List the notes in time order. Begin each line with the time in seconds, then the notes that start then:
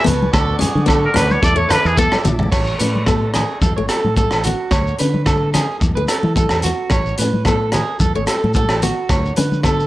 Already playing: G#5 A5 C#6
0.04 C#2 B3 B4, closed hi-hat, low conga, shekere
0.22 high conga
0.31 D2 A4 D5 F#5, kick, cross-stick, low agogo, shekere
0.59 C#4 G#4, closed hi-hat, high conga, low conga, shekere
0.75 D3, high conga
0.86 B3 A4, kick, cross-stick, low agogo, shekere
1.05 A#4
1.14 D2 C#4 B4, cross-stick, closed hi-hat, low conga, low agogo, shekere
1.31 C#5, high conga, shekere
1.42 E2 A4 D5 E5 A5 D6, kick, shekere
1.56 A3 C#5
1.69 B4, cross-stick, closed hi-hat, low conga, low agogo, shekere
1.85 E2 G#4, shekere
1.97 B3 A4, kick, shekere
2.12 cross-stick, high conga, low agogo
2.25 A#1 B3, high tom, low conga, shekere
2.39 floor tom, high conga
2.52 A1 C#5, kick, cross-stick, crash, low agogo, shekere
2.67 shekere
2.79 A2 C#4 B4, closed hi-hat, shekere
2.96 high conga
3.06 B3 A4, kick, cross-stick, low agogo, shekere
3.34 C#4 G#4, cross-stick, closed hi-hat, low conga, low agogo, shekere
3.61 E2 A4, kick, high conga, shekere
3.77 G#1 A3 C#5
3.89 A4, cross-stick, closed hi-hat, low agogo, shekere
4.04 A2, high conga
4.17 B3 A4, kick, shekere
4.31 A1, cross-stick, low agogo, shekere
4.44 B3 F#4, closed hi-hat, low conga, shekere
4.71 D2 C#5, kick, cross-stick, low agogo, shekere
4.87 shekere
4.99 D3 C#4 B4, closed hi-hat, shekere
5.14 high conga
5.26 A4, kick, cross-stick, low agogo, shekere
5.54 C#4 G#4, cross-stick, closed hi-hat, low conga, low agogo, shekere
5.80 E2, muted clean electric guitar stroke, kick, high conga, shekere
5.95 D2 A3 B4
6.08 A4, cross-stick, closed hi-hat, low agogo, shekere
6.23 E3, high conga
6.36 B3 A4, kick, shekere
6.49 E2, cross-stick, low agogo, shekere
6.62 B3 F#4, closed hi-hat, low conga, shekere
6.90 A1 C#5, kick, cross-stick, low agogo, shekere
7.06 shekere
7.18 A2 C#4 B4, closed hi-hat, shekere
7.33 high conga
7.45 B3 A4, kick, cross-stick, low agogo, shekere
7.72 G#4, cross-stick, closed hi-hat, low conga, low agogo, shekere
8.00 E2 A4, kick, high conga, shekere
8.15 G#1 A3 C#5
8.27 A4, cross-stick, closed hi-hat, low agogo, shekere
8.44 A2, high conga
8.54 B3 A4, kick, shekere
8.69 A1, cross-stick, low agogo, shekere
8.82 B3 F#4, closed hi-hat, low conga, shekere
9.09 D2 C#5, kick, cross-stick, low agogo, shekere
9.25 shekere
9.36 D3 C#4 B4, closed hi-hat, high conga, shekere
9.52 high conga, shekere
9.63 B3 A4, kick, cross-stick, low agogo, shekere
9.80 shekere